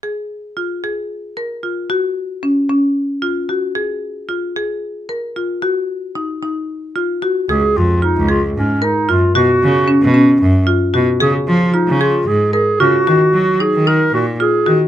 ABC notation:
X:1
M:7/8
L:1/16
Q:1/4=113
K:Dbmix
V:1 name="Clarinet"
z12 z2 | z12 z2 | z12 z2 | z12 z2 |
A2 F2 E2 F2 D2 E2 F2 | G6 z8 | A2 F2 E2 F2 A2 A2 G2- | G4 A2 B2 G2 A3 z |]
V:2 name="Marimba"
A4 F2 A4 B2 F2 | G4 D2 D4 F2 G2 | A4 F2 A4 B2 F2 | G4 E2 E4 F2 G2 |
A4 F2 A4 B2 F2 | G4 D2 D4 F2 G2 | A4 F2 A4 B2 F2 | G4 E2 E4 F2 G2 |]
V:3 name="Cello" clef=bass
z12 z2 | z12 z2 | z12 z2 | z12 z2 |
D,, z F,,2 z D,,3 A,,2 z2 G,, z | C, z D,2 z C,3 G,,2 z2 C, z | D, z F,2 z D,3 A,,2 z2 D, z | E, z G,2 z E,3 B,,2 z2 E, z |]